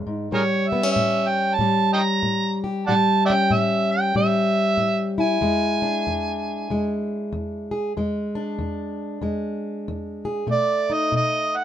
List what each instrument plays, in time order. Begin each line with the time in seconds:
Already playing: steel-string acoustic guitar G#3 D4
0.07 steel-string acoustic guitar G#2
0.32 steel-string acoustic guitar A2 G3, harmonica G#4 A#4 C#5
0.69 steel-string acoustic guitar B3, harmonica E5
0.83 steel-string acoustic guitar C#4
0.92 harmonica E5
0.96 steel-string acoustic guitar A2
1.28 harmonica G5
1.54 harmonica A5
1.59 steel-string acoustic guitar A2 G3
1.93 harmonica D#5 G5 A#5
2.23 steel-string acoustic guitar A2
2.64 steel-string acoustic guitar G4
2.87 steel-string acoustic guitar A2 G3, harmonica D5 F#5 A5
3.26 harmonica D5 E5 G5
3.30 steel-string acoustic guitar C#4
3.51 steel-string acoustic guitar A2, harmonica E5
3.92 harmonica G5
4.15 steel-string acoustic guitar A2 G3, harmonica E5
4.77 steel-string acoustic guitar A2
5.18 steel-string acoustic guitar E4, harmonica G#5
5.41 steel-string acoustic guitar E2 G#3
5.82 steel-string acoustic guitar D4
6.07 steel-string acoustic guitar E2
6.70 steel-string acoustic guitar E2 G#3
7.33 steel-string acoustic guitar E2
7.71 steel-string acoustic guitar G#4
7.97 steel-string acoustic guitar E2 G#3
8.35 steel-string acoustic guitar D4
8.59 steel-string acoustic guitar E2
9.21 steel-string acoustic guitar E2 G#3
9.88 steel-string acoustic guitar E2
10.25 steel-string acoustic guitar G#4
10.47 steel-string acoustic guitar B2 A3
10.52 harmonica D5
10.90 steel-string acoustic guitar D#4, harmonica D#5
11.12 steel-string acoustic guitar B2
11.16 harmonica D#5
11.56 harmonica F#5